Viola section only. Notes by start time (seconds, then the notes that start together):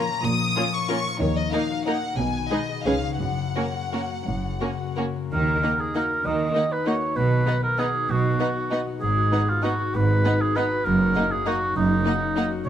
0.57 A#3 C#4
0.90 A#3 C#4
1.53 A#3 D#4
1.87 A#3 D#4
2.51 G#3 D#4
2.86 G#3 C#4
3.56 A#3 C#4
3.93 A#3 C#4
4.61 A#3 C#4
4.97 A#3 C#4
5.63 A#3
5.95 A#3
6.55 A#3
6.86 A#3
7.46 B3
7.79 B3
8.39 B3
8.71 B3
9.32 B3
9.64 B3
10.25 B3
10.57 B3
11.16 A#3
11.46 A#3
12.06 A#3
12.36 A#3